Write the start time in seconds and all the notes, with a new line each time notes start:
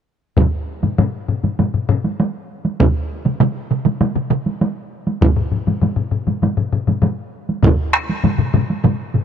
0.37 taiko, taiko low-mid, taiko high
0.83 taiko low-mid, taiko high
0.98 taiko low-mid, taiko high
1.28 taiko low-mid
1.44 taiko low-mid, taiko high
1.59 taiko low-mid, taiko high
1.74 taiko low-mid
1.89 taiko low-mid
2.04 taiko high
2.20 taiko high
2.65 taiko high
2.80 taiko, taiko mid, taiko high
3.25 taiko mid, taiko high
3.40 taiko mid, taiko high
3.71 taiko mid
3.86 taiko mid, taiko high
4.01 taiko mid, taiko high
4.16 taiko mid
4.30 taiko mid
4.46 taiko high
4.61 taiko high
5.07 taiko high
5.21 taiko, taiko low-mid, taiko high
5.36 taiko low-mid
5.52 taiko low-mid
5.67 taiko low-mid, taiko high
5.82 taiko low-mid, taiko high
5.96 taiko low-mid
6.11 taiko low-mid
6.27 taiko low-mid, taiko high
6.42 taiko low-mid, taiko high
6.57 taiko low-mid
6.73 taiko low-mid
6.87 taiko low-mid, taiko high
7.02 taiko low-mid, taiko high
7.49 taiko high
7.63 taiko, taiko low-mid, taiko mid, taiko high
7.93 taiko rim
8.09 taiko high
8.24 taiko low-mid, taiko mid, taiko high
8.38 taiko low-mid, taiko mid
8.54 taiko low-mid, taiko mid, taiko high
8.70 taiko high
8.84 taiko low-mid, taiko mid, taiko high
9.14 taiko low-mid, taiko mid